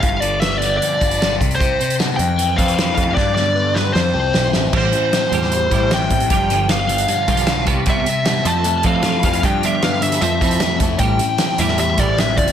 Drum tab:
CC |----------------|----------------|----------------|x---------------|
HH |x-x-x-x-x-xxx-xx|x-xxx-x-x-xxx-x-|----------------|--x-x-x-x-x-x-xx|
SD |----o-------o---|----o-------o---|o-o---o-o---o-o-|----o--o----o---|
BD |o---------o---o-|o---------o---o-|o---------------|o---------o---o-|

CC |----------------|----------------|----------------|----------------|
HH |x-x-x-xxx-xxx-x-|x-x-x-x-x-x-x-xx|x-x-x-xxx-xxx-x-|x-x-x-x-x-x-x-xx|
SD |----o-------o---|----o-------o---|----o--o----o---|----o--o----o---|
BD |o---------o---o-|o---------o---o-|o---------o---o-|o---------o---o-|